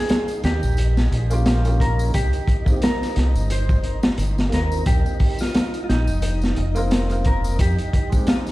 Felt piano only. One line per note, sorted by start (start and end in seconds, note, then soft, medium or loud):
0.00 1.24 A#3 medium
0.00 1.26 C#4 medium
0.00 1.27 F4 medium
0.00 1.28 G5 medium
1.30 1.60 A#3 loud
1.30 1.60 C#4 medium
1.30 1.61 F4 medium
1.30 1.61 G4 loud
1.64 2.11 A#3 medium
1.64 2.12 C#4 medium
1.64 2.13 F4 medium
1.64 2.13 G4 medium
2.65 4.48 A#3 medium
2.65 4.49 C4 medium
2.69 4.50 D#4 medium
2.69 4.51 G4 medium
4.49 6.70 A#3 medium
4.49 6.71 C4 medium
4.54 6.72 F4 medium
4.54 6.73 A#4 medium
6.75 7.05 A#3 loud
6.75 7.05 C4 medium
6.75 7.06 F4 medium
6.75 7.07 A#4 loud
7.08 7.56 A#3 medium
7.08 7.57 C4 medium
7.08 7.58 F4 medium
7.08 7.58 A#4 loud
8.10 8.52 G#3 medium
8.10 8.52 C4 medium
8.14 8.52 D#4 medium
8.14 8.52 G4 medium